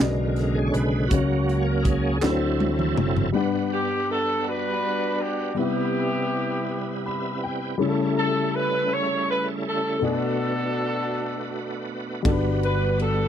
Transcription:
Already playing: tonewheel organ A#4
0.00 fingered electric bass B1, grand piano B2 B3 F#4 G#4 D5, tonewheel organ C#3 D3 G#3, snare
0.36 snare, closed hi-hat
0.55 tonewheel organ G#4
0.67 tonewheel organ C#5
0.74 fingered electric bass B1, tonewheel organ B4, closed hi-hat
1.08 fingered electric bass C#2, tonewheel organ F#3 A#3 C#4 F#4, grand piano G#3, kick, closed hi-hat
1.12 grand piano C#3 C#4 F#4 C#5
1.17 grand piano A#3
1.49 closed hi-hat
1.61 tonewheel organ A#4 C#5
1.83 tonewheel organ G#4, kick, closed hi-hat
2.21 fingered electric bass D2, grand piano D3 A3 D4 F#4 B4, tonewheel organ F#3 C4 E4 A4, snare, clap
2.31 grand piano C5
2.60 high tom
2.79 mid tom
2.97 fingered electric bass F#1, mid tom
3.17 floor tom
3.32 grand piano G2 G3 B3 D4 F#5, tonewheel organ G3 B3 D4 B4 F#5
3.37 grand piano B4
3.73 horn section G4
4.11 horn section A4
4.48 horn section D4 F#4 B4
5.21 horn section G4
5.55 tonewheel organ C3 G3 B3 E4 B4, grand piano C3 G3 B3 E4, horn section B3 E4 G4
5.60 grand piano B4
7.06 tonewheel organ E5, grand piano B5
7.43 tonewheel organ G5, grand piano G5
7.78 grand piano C#3 G3 A3 C#4 E4, tonewheel organ C#3 A4
7.82 tonewheel organ G3 A3 C#4 E4, grand piano G#4
7.89 grand piano A4
8.18 horn section A4
8.55 horn section B4
8.93 horn section C#5
9.30 horn section B4
9.68 horn section A4
9.99 grand piano B2 A3 B3 D4 F#4
10.04 tonewheel organ A3 B3 D4 F#4 B4, horn section D4 F#4 A4, grand piano A4
10.10 grand piano B4
12.23 fingered electric bass G1, grand piano G2 G3 B3 D4 F#4 A4, kick, ride
12.27 tonewheel organ G3 B3 D4 F#4 A4
12.32 grand piano B4, tonewheel organ B4
12.63 horn section B4, ride
12.99 horn section A4, ride

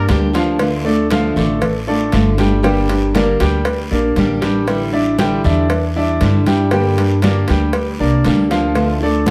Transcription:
Already playing: grand piano A#3 A#4 D5
0.08 upright bass D2, steel-string acoustic guitar D3 G3 A#3 D4 G4, cowbell, high conga, short guiro
0.33 grand piano F3 F4 F5, steel-string acoustic guitar A#3 D4 G4, cowbell, short guiro
0.59 steel-string acoustic guitar D3 A3 D4 F4, cowbell, high conga, long guiro
0.85 grand piano A3 A4 D5, steel-string acoustic guitar A3 D4 F4, high conga
1.10 steel-string acoustic guitar D3 A3 D4 F4, grand piano F3 F4 F5, cowbell, high conga, short guiro
1.36 upright bass A1, grand piano A3 A4 D5, low conga, short guiro
1.61 muted steel-string acoustic guitar stroke, cowbell, high conga, low conga, long guiro
1.87 grand piano A3 A4 D5, steel-string acoustic guitar A3 D4 F4, high conga
2.12 upright bass G1, steel-string acoustic guitar D3 A3 D4 F4, cowbell, high conga, short guiro
2.37 grand piano G3 G4 G5, steel-string acoustic guitar A3 D4 F4, cowbell, high conga, short guiro
2.63 steel-string acoustic guitar D3 G3 A#3 D4 G4, grand piano G3 G4 G5, cowbell, high conga, long guiro
2.89 steel-string acoustic guitar A#3 D4 G4, cowbell, high conga
3.14 steel-string acoustic guitar D3 G3 A#3 D4 G4, grand piano A#3 A#4 D5, cowbell, high conga, short guiro
3.40 upright bass D2, grand piano G3 G4 G5, cowbell, high conga, short guiro
3.65 muted steel-string acoustic guitar stroke, cowbell, high conga, long guiro
3.91 upright bass A#1, grand piano A#3 A#4 D5, steel-string acoustic guitar A#3 D4 G4, high conga
4.16 upright bass A1, steel-string acoustic guitar D3 G3 A#3 D4 G4, cowbell, high conga, short guiro
4.41 grand piano G3 G4 G5, steel-string acoustic guitar A#3 D4 G4, cowbell, high conga, short guiro
4.67 steel-string acoustic guitar D3 G3 D4 E4, cowbell, high conga, long guiro
4.92 steel-string acoustic guitar G3 D4 E4, grand piano D4 D5 E5, high conga
5.19 steel-string acoustic guitar D3 G3 D4 E4, grand piano G3 G4 G5, cowbell, high conga, short guiro
5.44 upright bass E2, grand piano D4 D5 E5, low conga, short guiro
5.70 muted steel-string acoustic guitar stroke, cowbell, high conga, long guiro
5.96 steel-string acoustic guitar G3 D4 E4, grand piano D4 D5 E5, high conga
6.20 upright bass G2, steel-string acoustic guitar D3 G3 D4 E4, cowbell, high conga, short guiro
6.46 grand piano G3 G4 G5, steel-string acoustic guitar G3 D4 E4, cowbell, high conga, short guiro
6.71 steel-string acoustic guitar D3 G3 A#3 D4 G4, grand piano G3 G4 G5, cowbell, long guiro
6.97 steel-string acoustic guitar A#3 D4 G4, cowbell, high conga
7.22 steel-string acoustic guitar D3 G3 A#3 D4 G4, grand piano A#3 A#4 D5, cowbell, high conga, short guiro
7.48 upright bass D2, grand piano G3 G4 G5, cowbell, high conga, short guiro
7.73 muted steel-string acoustic guitar stroke, cowbell, high conga, long guiro
7.99 upright bass C2, grand piano A#3 A#4 D5, steel-string acoustic guitar A#3 D4 G4, high conga
8.24 upright bass D2, steel-string acoustic guitar D3 G3 A#3 D4 G4, cowbell, high conga, short guiro
8.50 grand piano F3 F4 F5, steel-string acoustic guitar A#3 D4 G4, cowbell, short guiro
8.75 steel-string acoustic guitar D3 A3 D4 F4, cowbell, high conga, long guiro
9.00 grand piano A3 A4 D5, steel-string acoustic guitar A3 D4 F4, high conga
9.26 steel-string acoustic guitar D3 A3, high conga

